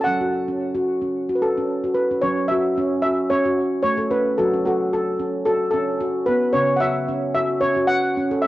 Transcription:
0.01 steel pan F#5 A5
0.07 handpan F#3 C#4
0.21 handpan F#4
0.48 handpan C#4
0.75 handpan F#4
1.02 handpan C#4
1.29 handpan F#4
1.35 steel pan B4
1.42 steel pan A4
1.58 handpan C#4
1.84 handpan F#4
1.94 steel pan B4
2.11 handpan C#4
2.22 handpan F#3 C#4, steel pan C#5
2.48 handpan F#4, steel pan E5
2.78 handpan C#4
3.02 handpan F#4, steel pan E5
3.30 handpan C#4, steel pan C#5
3.45 handpan F#4
3.83 handpan A3, steel pan C#5
3.97 handpan A4
4.11 handpan C#4, steel pan B4
4.38 handpan F#3 F#4, steel pan A4
4.54 handpan C#4
4.65 steel pan F#4, handpan A4
4.93 steel pan A4
5.19 handpan C#4
5.45 handpan F#4, steel pan A4
5.71 handpan C#4, steel pan A4
6.01 handpan F#4
6.26 handpan B3, steel pan B4
6.53 handpan C#3 C#4, steel pan C#5
6.76 steel pan F#5
6.80 handpan F#4, steel pan E5
7.08 handpan C#4
7.35 handpan F#4, steel pan E5
7.61 handpan C#4, steel pan C#5
7.77 handpan F#4
7.87 steel pan F#5
8.17 handpan C#4
8.31 handpan A4
8.42 steel pan E5

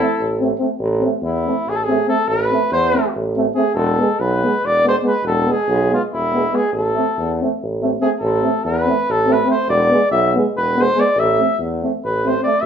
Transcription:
Already playing: clarinet E4, flugelhorn A4
0.01 euphonium A3
0.19 tuba A1
0.40 euphonium A3 C4
0.59 euphonium A3 C4
0.79 tuba A1
1.01 euphonium A3 C4
1.22 tuba E2, flugelhorn E4
1.46 euphonium A3 C4
1.66 tuba A1, flugelhorn G#4
1.75 flugelhorn A4
1.84 euphonium C4, flugelhorn G#4
1.90 euphonium A3
2.07 euphonium A3 C4, flugelhorn A4
2.28 tuba A1, flugelhorn B4
2.50 euphonium A3 C4
2.71 tuba E2, flugelhorn C5
2.92 euphonium C4
2.96 euphonium A3
3.15 tuba A1
3.36 euphonium A3 C4
3.55 euphonium A3 C4, flugelhorn G#4
3.74 tuba E1, flugelhorn A4
3.98 euphonium G#3 B3
4.19 tuba B1, flugelhorn B4
4.42 euphonium G#3 B3
4.64 tuba E1, flugelhorn D5
4.84 euphonium G#3 B3
4.89 flugelhorn C5
5.02 euphonium G#3 B3
5.08 flugelhorn B4
5.23 tuba E1
5.27 flugelhorn A4
5.45 euphonium G#3 B3
5.52 flugelhorn G#4
5.68 tuba B1
5.91 euphonium G#3 B3, flugelhorn F4
6.13 tuba E1, flugelhorn E4
6.33 euphonium G#3 B3
6.51 euphonium G#3 B3
6.56 flugelhorn G#4
6.72 tuba A1, flugelhorn A4
6.95 euphonium A3 C4
7.17 tuba E2
7.41 euphonium A3 C4
7.62 tuba A1
7.82 euphonium A3 C4
8.01 euphonium A3 C4, flugelhorn G#4
8.20 tuba A1, flugelhorn A4
8.43 euphonium A3 C4
8.65 tuba E2, flugelhorn B4
8.85 euphonium A3 C4
9.09 tuba A1, flugelhorn A4
9.27 euphonium A3 C4
9.33 flugelhorn B4
9.45 euphonium A3 C4
9.51 flugelhorn C5
9.68 tuba E1, flugelhorn D5
9.89 euphonium G#3 B3
10.11 tuba B1, flugelhorn E5
10.35 euphonium G#3 B3
10.56 tuba E1, flugelhorn B4
10.76 euphonium G#3 B3
10.81 flugelhorn C5
10.95 euphonium G#3 B3
11.00 flugelhorn D5
11.15 tuba A1
11.20 flugelhorn E5
11.38 euphonium A3 C4
11.59 tuba E2
11.83 euphonium A3 C4
12.04 tuba A1, flugelhorn B4
12.25 euphonium A3 C4, flugelhorn C5
12.41 euphonium C4, flugelhorn D5
12.46 euphonium A3
12.61 tuba A1, flugelhorn E5

